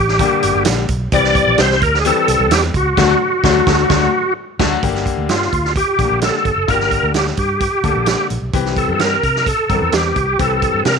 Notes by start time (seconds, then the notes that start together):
Already playing: A1 G4
0.08 snare
0.19 D3 G3 A#3 G4, kick, closed hi-hat
0.43 G1, closed hi-hat
0.55 G1
0.65 A#1, snare, closed hi-hat
0.88 B1, kick, closed hi-hat
1.12 C2 E3 G3 C4 G4 D5, kick, closed hi-hat
1.24 snare
1.35 kick, closed hi-hat
1.47 A#1
1.58 C2 C5, snare, closed hi-hat
1.71 snare
1.81 D2 A#4, kick, closed hi-hat
1.94 snare
2.00 G#4
2.05 E3 G3 C4 G4 A4, closed hi-hat
2.28 C2, closed hi-hat
2.39 C2
2.51 E2 G4, snare, closed hi-hat
2.74 C#2 F#4, kick, closed hi-hat
2.97 D2 D3 F#3 A3, kick, snare, crash
3.03 F#4
3.44 D2 D3 F#3 A3, kick, snare
3.50 F#4
3.67 D2 D3 F#3 A3, kick, snare
3.73 F#4
3.90 D2 D3 F#3 A3, kick, snare
3.96 F#4
4.59 D2 D3 F#3 A3, kick, snare, crash
4.66 F#4
4.83 G1 D3 A#3 G4, kick, closed hi-hat
4.95 snare
5.06 kick, closed hi-hat
5.17 D2
5.29 G2 F4, snare, closed hi-hat
5.42 snare
5.53 D2, kick, closed hi-hat
5.65 snare
5.76 G4, kick, closed hi-hat
5.98 A#1 D3 A3 G4, kick, closed hi-hat
6.04 A#3
6.10 A#1
6.21 A4, snare, closed hi-hat
6.45 G1, kick, closed hi-hat
6.56 F#1
6.68 G1 D3 A#3 F4 A#4, kick, closed hi-hat
6.74 G4
6.80 snare
6.91 kick, closed hi-hat
7.03 D2
7.14 G4, snare, closed hi-hat
7.27 snare
7.37 G2 G4, kick, closed hi-hat
7.60 kick, closed hi-hat
7.83 D2 D3 A#3 A4, kick, closed hi-hat
7.96 A#1
8.06 snare, closed hi-hat
8.30 A#1, closed hi-hat
8.42 B1
8.53 C2 E3 C4 G4, kick, closed hi-hat
8.65 snare
8.77 A4, kick, closed hi-hat
8.89 G2
8.94 A4
8.99 A#4, snare, closed hi-hat
9.23 C3, kick, closed hi-hat
9.36 snare
9.46 A4, kick, closed hi-hat
9.69 G2 D3 C4 A#4, kick, closed hi-hat
9.75 E3
9.82 E2
9.92 E2 G4, snare, closed hi-hat
10.16 C2, kick, closed hi-hat
10.39 C2 E3 C4 G4 A4, kick, closed hi-hat
10.62 kick, closed hi-hat
10.74 G2
10.85 C3 A#4, snare, closed hi-hat